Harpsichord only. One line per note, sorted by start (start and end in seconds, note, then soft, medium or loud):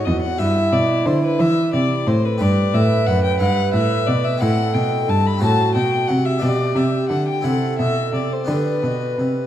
0.00 0.36 D#4 soft
0.00 0.37 A4 soft
0.08 0.37 E2 medium
0.38 0.71 G2 soft
0.38 2.36 G4 soft
0.38 2.36 B4 soft
0.73 1.03 B2 medium
1.06 1.37 D3 soft
1.40 1.70 E3 medium
1.73 2.03 C3 medium
2.07 2.37 A2 medium
2.38 2.71 G2 soft
2.38 3.37 G4 soft
2.38 3.37 B4 soft
2.75 3.04 A2 soft
3.08 3.38 F#2 medium
3.39 3.72 G2 medium
3.39 4.38 E4 soft
3.39 4.39 B4 soft
3.76 4.05 A2 soft
4.09 4.39 B2 medium
4.38 5.36 C4 soft
4.38 5.38 E4 soft
4.38 5.39 C5 soft
4.42 4.72 A2 soft
4.75 5.06 B2 medium
5.09 5.39 G2 medium
5.37 6.37 C4 soft
5.37 6.38 F#4 soft
5.37 6.39 C5 soft
5.42 5.72 A2 soft
5.75 6.06 B2 soft
6.09 6.40 C3 medium
6.38 7.40 D4 soft
6.38 7.40 G4 soft
6.38 7.41 B4 soft
6.43 6.73 B2 soft
6.76 7.07 C3 soft
7.11 7.42 D3 soft
7.41 8.44 C4 soft
7.41 8.45 E4 soft
7.41 8.46 A4 soft
7.46 7.77 C3 soft
7.80 8.11 B2 soft
8.15 8.46 C3 soft
8.44 9.47 B3 soft
8.44 9.47 D4 soft
8.44 9.47 G4 soft
8.49 8.80 D3 soft
8.84 9.15 B2 soft
9.19 9.47 C3 soft